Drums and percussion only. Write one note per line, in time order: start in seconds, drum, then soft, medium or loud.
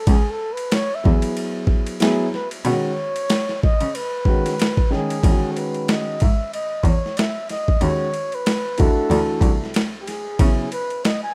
0.07 kick loud
0.07 ride medium
0.57 ride medium
0.72 snare loud
0.72 hi-hat pedal medium
0.72 ride medium
1.05 kick loud
1.22 ride medium
1.37 ride medium
1.67 kick medium
1.86 ride medium
2.00 snare loud
2.00 hi-hat pedal medium
2.00 ride medium
2.34 snare soft
2.51 ride medium
2.65 ride medium
3.16 ride medium
3.30 snare loud
3.30 hi-hat pedal medium
3.30 ride medium
3.49 snare soft
3.63 kick loud
3.81 ride medium
3.95 ride medium
4.25 kick medium
4.46 snare soft
4.46 ride medium
4.59 snare loud
4.59 hi-hat pedal medium
4.59 ride medium
4.77 kick medium
4.93 snare soft
5.10 ride medium
5.24 kick loud
5.24 ride medium
5.57 ride medium
5.74 ride soft
5.88 snare loud
5.88 hi-hat pedal medium
5.88 ride medium
6.20 kick loud
6.20 ride medium
6.54 ride medium
6.84 kick medium
6.84 ride soft
7.06 snare soft
7.17 snare loud
7.17 hi-hat pedal soft
7.17 ride medium
7.49 snare soft
7.49 ride medium
7.68 kick medium
7.81 ride medium
8.14 ride soft
8.32 ride soft
8.46 snare loud
8.46 hi-hat pedal medium
8.46 ride medium
8.78 kick medium
8.78 ride medium
9.11 ride medium
9.41 kick medium
9.41 ride medium
9.64 snare soft
9.74 snare loud
9.74 hi-hat pedal soft
9.74 ride medium
10.07 snare soft
10.07 ride medium
10.39 kick loud
10.39 ride medium
10.72 ride medium
10.90 ride soft
11.05 snare loud
11.05 hi-hat pedal medium
11.05 ride medium